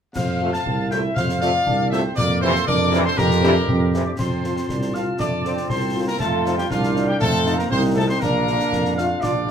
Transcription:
0.15 F2 C5 F5 F6, concert bass drum, snare, crash
0.40 C3 A3 C4 F4 A4
0.52 F5 A5 A6, snare
0.66 C2 C4, concert bass drum
0.91 C3 A3 C4 E4 F4 A4 E5 G5 G6, snare
1.15 F2 F4 C5 F5 F6, concert bass drum, snare
1.29 snare
1.41 C3 A3 C4 F4 A4 D5 F5 F6, snare
1.67 C2 D4, concert bass drum
1.91 C3 A3 C4 F4 A4 C5 E5 E6, snare
2.16 F2 A#3 A#4 D5 D6, concert bass drum, snare, crash
2.41 C3 E3 C4 E4 G4 A4 C5 C6
2.55 snare
2.67 F2 D4 A#4 D5 D6, concert bass drum
2.92 C3 E3 C4 E4 G4, snare
3.05 A4 C5 C6
3.17 F2 C4 G4 A#4 A#5, concert bass drum, snare
3.31 snare
3.42 C3 E3 C4 D4 E4 G4, snare
3.68 F2 C4, concert bass drum
3.93 C3 E3 C4 E4 G4, snare
4.06 D4 D5 D6
4.18 F2 C4 F4 C5 A5 C6, concert bass drum, snare, crash
4.43 C4 F4 A4, snare
4.57 snare
4.69 C2 D4, concert bass drum, snare
4.82 snare
4.94 C4 F4 A4 F5 F6, snare
5.19 F2 A3 D4 D5 D6, concert bass drum, snare
5.44 C4 F4 A4, snare
5.57 snare
5.69 C2 C4 C5 C6, concert bass drum, snare
5.95 C4 F4 A4
6.07 A#3 A#4 A#5
6.20 F2 A3 D#4 F4 A4 F5 A5, concert bass drum, snare
6.45 C4 D#4 F4, snare
6.57 G3 G4 G5, snare
6.70 C2 F3 D4 F4 F5, concert bass drum, snare
6.83 snare
6.95 C4 D#4 F4, snare
7.07 G3 G4 G5
7.19 F2 A3 C4 A4 A5, concert bass drum, snare
7.46 C4 D#4 F4, snare
7.57 A#3 A#4 A#5, snare
7.70 C2 C4 D#4 C5 C6, concert bass drum, snare
7.95 A3 C4 D#4 F4 A4 A5
8.09 C4 C5 C6
8.20 A#1 A#3 D4 A#4 F5 A#5, concert bass drum, snare, crash
8.47 A3 D4 F4, snare
8.60 snare
8.72 F2, concert bass drum, snare
8.85 snare
8.96 A3 D4 F4 F5 F6, snare
9.21 A#1 D4 F4 D5 D6, concert bass drum, snare
9.47 E4

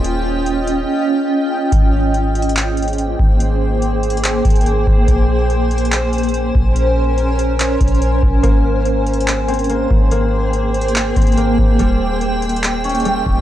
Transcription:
Already playing: D#1 C#4 F4 D#5 G5
0.04 closed hi-hat
0.46 closed hi-hat
0.68 closed hi-hat
1.72 G#1 A#3 G#4 C5, kick, closed hi-hat
2.14 closed hi-hat
2.35 closed hi-hat
2.42 closed hi-hat
2.49 closed hi-hat
2.56 clap, closed hi-hat
2.77 closed hi-hat
2.82 closed hi-hat
2.88 closed hi-hat
2.93 closed hi-hat
2.98 closed hi-hat
3.19 G#1, kick
3.40 closed hi-hat
3.82 closed hi-hat
4.03 closed hi-hat
4.10 closed hi-hat
4.17 closed hi-hat
4.24 clap, closed hi-hat
4.45 G#1, kick, closed hi-hat
4.50 closed hi-hat
4.56 closed hi-hat
4.61 closed hi-hat
4.66 closed hi-hat
4.87 G#1, kick
5.08 A#1 C#4 A#4 G#5, kick, closed hi-hat
5.50 closed hi-hat
5.71 closed hi-hat
5.78 closed hi-hat
5.85 closed hi-hat
5.92 clap, closed hi-hat
6.13 closed hi-hat
6.18 closed hi-hat
6.23 closed hi-hat
6.29 closed hi-hat
6.34 closed hi-hat
6.55 A#1, kick
6.76 closed hi-hat
7.18 closed hi-hat
7.39 closed hi-hat
7.60 clap, closed hi-hat
7.81 A#1, kick, closed hi-hat
7.88 closed hi-hat
7.95 closed hi-hat
8.02 closed hi-hat
8.23 A#1, kick
8.43 G#1 A#3 G#4 G5, kick, closed hi-hat
8.86 closed hi-hat
9.07 closed hi-hat
9.14 closed hi-hat
9.21 closed hi-hat
9.27 clap, closed hi-hat
9.48 C4, closed hi-hat
9.54 closed hi-hat
9.59 closed hi-hat
9.64 closed hi-hat
9.70 A#3, closed hi-hat
9.91 G#1, kick
10.11 A#3, closed hi-hat
10.53 closed hi-hat
10.74 closed hi-hat
10.81 closed hi-hat
10.88 closed hi-hat
10.95 clap, closed hi-hat
11.16 G#1 C4, kick, closed hi-hat
11.22 closed hi-hat
11.27 closed hi-hat
11.32 closed hi-hat
11.37 A#3, closed hi-hat
11.58 G#1, kick
11.79 D#1 G3 C#4 F4 D#5, kick, closed hi-hat
12.21 closed hi-hat
12.42 closed hi-hat
12.49 closed hi-hat
12.56 closed hi-hat
12.63 clap, closed hi-hat
12.84 C#4, closed hi-hat
12.89 closed hi-hat
12.95 closed hi-hat
13.00 closed hi-hat
13.05 G3, closed hi-hat
13.26 D#1, kick

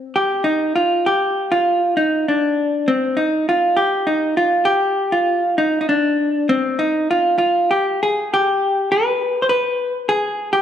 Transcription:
Already playing: C4
0.16 G4
0.44 D#4
0.76 F4
1.06 G4
1.52 F4
1.97 D#4
2.28 D4
2.88 C4
3.17 D#4
3.49 F4
3.77 G4
4.07 D#4
4.37 F4
4.65 G4
5.12 F4
5.58 D#4
5.81 D#4
5.89 D4
6.49 C4
6.79 D#4
7.11 F4
7.38 F4
7.71 G4
8.03 G#4
8.34 G4
8.92 B4
9.42 C5
9.49 B4
10.09 G#4
10.53 G4

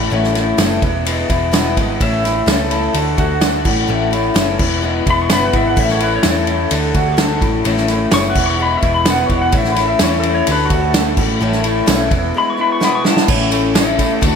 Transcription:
Already playing: A3 C#4 E4 F#4
0.10 A1 A2 E3 A3 C#4 E4
0.24 snare
0.34 A3 C#4 E4, snare, ride
0.57 F#1 A2 E3 A3 C#4 E4, snare, ride, tambourine
0.82 E1 E2 E3 G#3 B3 E4, kick, ride
1.05 E3 G#3 B3 E4, ride
1.28 E1 E3 G#3 B3 E4, kick, ride
1.52 E2 B2 E3 G#3 B3 E4, snare, ride, tambourine
1.76 G#1 E3 G#3 B3 E4, kick, ride
2.00 A1 A2 E3 A3 C#4 E4 E5, kick, ride
2.23 A3 C#4 E4, snare, ride
2.46 C#2 A2 E3 A3 C#4 E4 A4, snare, ride, tambourine
2.70 A3 C#4 E4 A4, ride
2.93 D2 D3 A3 D4 F#4, ride
3.17 D2 A3 D4 F#4, kick, ride
3.41 D3 A3 D4 F#4, snare, ride, tambourine
3.64 A1 A2 A3 C#4 E4, kick, crash
3.88 A1 A2 E3 A3 C#4 E4
4.11 A3 C#4 E4, ride
4.34 F#1 A2 E3 A3 C#4 E4, snare, ride, tambourine
4.58 E1 E2 E3 G#3 B3 E4, kick, crash
4.81 E3 G#3 B3 E4
5.05 E1 E3 G#3 B3 E4, kick, ride
5.10 B5
5.22 C#6
5.29 F#1 E2 B2 E3 G#3 B3 E4 B5, snare, ride, tambourine
5.45 F#5
5.53 G#1 E3 G#3 B3 E4 E5, kick, ride
5.67 F#5
5.76 A1 A2 E3 A3 C#4 E4, kick, crash
5.80 E5
5.88 C#5, snare
5.99 A3 C#4 E4, ride
6.04 B4
6.16 C#5
6.23 E2 A2 E3 A3 C#4 E4, snare, ride, tambourine
6.28 A4
6.46 A3 C#4 E4, ride
6.70 D2 D3 A3 D4 F#4, ride
6.94 D2 A3 D4 F#4, kick, ride
7.17 D3 A3 D4 F#4, snare, ride, tambourine
7.41 A1 A2 C#4 E4, kick, ride
7.45 A3
7.64 A1 A2 E3 A3 C#4 E4, ride
7.77 snare
7.87 A3 C#4 E4, snare, ride
8.11 F#1 A2 E3 A3 C#4 E4 C#6, snare, ride, tambourine
8.30 F#5
8.34 E1 E2 E3 G#3 B3 E4, kick, crash
8.46 C#6
8.57 E3 G#3 B3 E4
8.62 B5
8.77 E4 E5
8.82 E1 E3 G#3 B3, kick, ride
8.94 B5
9.05 E2 B2 E3 G#3 B3 E4, snare, ride, tambourine
9.10 F#5
9.26 E1 B3 E4 C#5, kick, ride
9.30 E3 G#3
9.42 F#5
9.52 A1 A2 E3 A3 C#4 E4, kick, ride
9.57 E5
9.64 snare
9.72 E4 B4
9.76 A3 C#4, snare, ride
9.88 E5
9.99 E2 A2 E3 A3 C#4 E4, snare, ride, tambourine
10.03 C#5
10.20 E4 A4, ride
10.24 A3 C#4
10.35 C#5
10.46 D2 D3 A3 D4 F#4, ride
10.52 B4
10.65 F#4
10.70 D2 A3 D4 F#4, kick, ride
10.81 A4
10.94 D3 A3 D4 F#4, snare, ride, tambourine
11.17 A1 A2 A3 C#4 E4, kick, crash
11.40 A1 A2 E3 A3 C#4 E4
11.52 snare
11.63 A3 C#4 E4, ride
11.86 B1 A2 E3 A3 C#4 E4, snare, ride, tambourine
12.11 E1 E2 E3 G#3 B3 E4, kick, ride
12.34 E3 G#3 B3 E4
12.38 B5
12.50 C#6
12.57 E3 G#3 B3 E4
12.61 B5
12.72 C#6
12.80 E2 B2 E3 G#3 B3 E4, snare
12.85 B5
12.95 C#6
13.04 E3 G#3 B3 E4 A5, snare
13.17 snare
13.27 A1 A2 E3 A3 C#4 E4, kick, crash
13.51 A3 C#4 E4, ride, tambourine
13.74 E3 A3 C#4 E4, snare, ride, tambourine
13.98 A3 C#4 E4, kick, ride, tambourine
14.21 D2 D3 A3 D4 F#4, kick, ride, tambourine

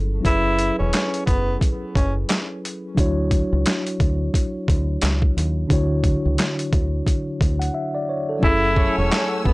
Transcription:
Already playing: G1 F#3 C#4 E4 G#4 A4
0.21 F#3 C#4 E4
0.25 F#1 E4 G#4 B4, kick, closed hi-hat
0.59 closed hi-hat
0.79 E1 C#4
0.93 snare, clap, closed hi-hat
1.14 closed hi-hat
1.26 F#1 B3, kick, closed hi-hat
1.61 kick, closed hi-hat
1.96 F#1 C#4, kick, closed hi-hat
2.29 snare, clap, closed hi-hat
2.65 closed hi-hat
2.95 D2 F#3 D4 E4, kick, closed hi-hat
2.99 F#4 C#5
3.31 kick, closed hi-hat
3.53 C#2
3.66 snare, clap, closed hi-hat
3.87 closed hi-hat
4.00 D2, kick, closed hi-hat
4.34 kick, closed hi-hat
4.68 D2, kick, closed hi-hat
5.01 C#2, snare, clap, closed hi-hat
5.22 kick
5.37 D#2, closed hi-hat
5.67 D2 D3 D4 E4, kick, closed hi-hat
5.72 F#4 C#5
6.04 kick, closed hi-hat
6.25 C#2
6.38 snare, clap, closed hi-hat
6.59 closed hi-hat
6.73 D2, kick, closed hi-hat
7.07 kick, closed hi-hat
7.41 D2, kick, closed hi-hat
7.59 F#5, closed hi-hat
7.74 E5
7.95 D5
8.09 C#5
8.29 A4
8.39 F#3 C#4 E4, kick
8.43 F#1 A3 E4 G#4 A4 F#5 G#5 E6
8.76 C#4 A4 C#5, kick
8.98 E1 C#4
9.12 snare, clap
9.45 F#1 B3, kick

